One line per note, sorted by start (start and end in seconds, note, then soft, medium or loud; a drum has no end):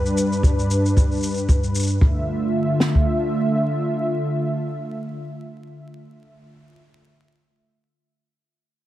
0.00 1.97 G2 medium
0.00 1.96 G3 medium
0.00 1.96 D4 medium
0.00 1.97 B4 medium
0.06 shaker soft
0.18 shaker medium
0.32 shaker soft
0.43 kick medium
0.43 shaker soft
0.59 shaker soft
0.71 shaker medium
0.86 shaker soft
0.97 kick medium
0.97 shaker soft
1.12 shaker soft
1.15 shaker soft
1.17 shaker soft
1.20 shaker soft
1.23 shaker medium
1.27 shaker soft
1.30 shaker soft
1.34 shaker soft
1.38 shaker soft
1.49 kick medium
1.49 shaker soft
1.64 shaker soft
1.75 shaker medium
1.79 shaker medium
1.83 shaker soft
1.87 shaker soft
1.90 shaker soft
2.01 6.47 D3 medium
2.01 6.47 A3 medium
2.01 6.47 F4 medium
2.01 6.47 E5 medium
2.01 kick medium
2.80 snare soft
2.95 kick medium